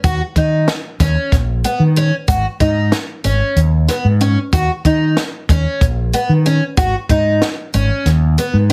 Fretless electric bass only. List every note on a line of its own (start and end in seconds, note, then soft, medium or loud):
0.04 0.19 D#2 medium
0.36 0.66 D#3 medium
1.00 1.15 D#2 medium
1.32 1.63 A#1 medium
1.80 2.10 D#3 medium
2.28 2.44 G#1 medium
2.60 2.91 G#2 medium
3.25 3.40 G#1 medium
3.56 3.87 D#2 medium
4.05 4.35 G#2 medium
4.53 4.68 D#2 medium
4.85 5.15 D#3 medium
5.49 5.65 D#2 medium
5.81 6.12 A#1 medium
6.29 6.60 D#3 medium
6.77 6.93 G#1 medium
7.09 7.40 G#2 medium
7.74 7.89 G#1 medium
8.06 8.36 D#2 loud
8.54 8.73 G#2 loud